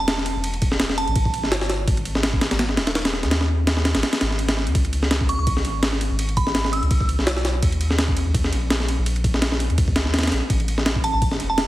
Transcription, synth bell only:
0.00 0.21 A5 medium
0.98 1.34 A5 medium
5.29 5.35 C#6 medium
5.39 5.44 C#6 medium
6.37 6.59 B5 medium
6.73 7.00 E6 medium
11.04 11.10 A5 medium
11.14 11.19 A5 medium
11.50 11.67 A5 medium

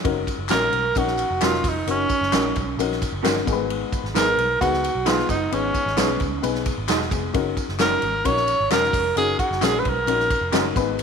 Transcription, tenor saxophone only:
0.51 0.99 A#4 loud
0.98 1.46 F#4 loud
1.44 1.70 F4 medium
1.69 1.89 D#4 medium
1.90 2.76 C#4 loud
4.17 4.59 A#4 loud
4.61 5.09 F#4 loud
5.07 5.29 F4 loud
5.30 5.55 D#4 loud
5.54 6.44 C#4 loud
7.81 8.27 A#4 loud
8.26 8.71 C#5 loud
8.72 9.14 A#4 loud
9.17 9.38 G#4 loud
9.39 9.66 F#4 medium
9.64 9.81 G#4 loud
9.79 9.90 B4 medium
9.88 10.78 A#4 loud

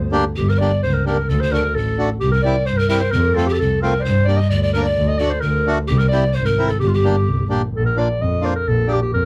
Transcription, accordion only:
0.12 0.24 A#3 medium
0.12 0.24 D4 medium
0.12 0.25 G4 loud
0.61 0.72 A#3 medium
0.61 0.72 D4 medium
0.61 0.72 G4 medium
1.06 1.17 A#3 medium
1.06 1.17 D4 medium
1.06 1.17 G4 medium
1.52 1.63 A3 medium
1.52 1.63 D4 medium
1.52 1.63 F#4 medium
1.98 2.09 A3 medium
1.98 2.10 D4 medium
1.98 2.10 F#4 medium
2.44 2.56 G3 medium
2.44 2.56 C4 medium
2.44 2.56 E4 medium
2.89 3.01 G3 medium
2.89 3.01 C4 medium
2.89 3.01 E4 medium
3.35 3.47 A3 medium
3.35 3.47 C4 medium
3.35 3.48 F4 medium
3.82 3.94 A3 medium
3.82 3.94 C4 medium
3.82 3.94 F4 medium
4.28 4.40 A#3 medium
4.28 4.39 D4 medium
4.28 4.40 G4 medium
4.75 4.87 A#3 medium
4.75 4.86 D4 medium
4.75 4.86 A#4 medium
5.20 5.32 A3 medium
5.20 5.32 D4 medium
5.20 5.32 F#4 medium
5.67 5.78 A3 medium
5.67 5.78 D4 medium
5.67 5.79 F#4 medium
6.12 6.24 C4 medium
6.12 6.24 E4 medium
6.12 6.24 G4 medium
6.58 6.70 C4 medium
6.58 6.70 E4 medium
6.58 6.70 A#4 medium
7.04 7.16 A#3 medium
7.04 7.16 D4 medium
7.04 7.16 G4 medium
7.50 7.62 A#3 medium
7.50 7.62 D4 medium
7.50 7.62 G4 medium
7.97 8.09 A#3 medium
7.97 8.08 D4 medium
7.97 8.08 F4 medium
8.41 8.54 A#3 medium
8.41 8.54 D4 medium
8.41 8.54 F4 medium
8.87 9.00 A#3 medium
8.87 9.00 D4 medium
8.87 9.00 G4 medium

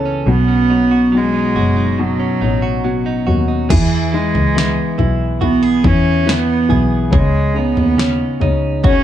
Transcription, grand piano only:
0.00 0.29 C#3 medium
0.28 1.13 B2 medium
0.71 1.57 F#3 soft
1.15 1.98 B2 soft
1.58 2.42 F#3 soft
2.00 2.83 B2 medium
2.43 3.26 F#3 soft
2.85 3.68 B2 soft
3.28 3.69 F#3 soft
3.71 4.12 E3 medium
4.14 4.55 E3 medium
4.56 4.98 E3 medium
4.99 5.40 E3 soft
5.42 5.82 E3 medium
5.84 6.25 E3 soft
6.26 6.67 E3 soft
6.69 7.11 E3 medium
7.11 7.53 C#3 medium
7.54 7.96 C#3 medium
7.97 8.39 C#3 medium
8.40 8.82 C#3 medium
8.83 9.04 C#3 medium

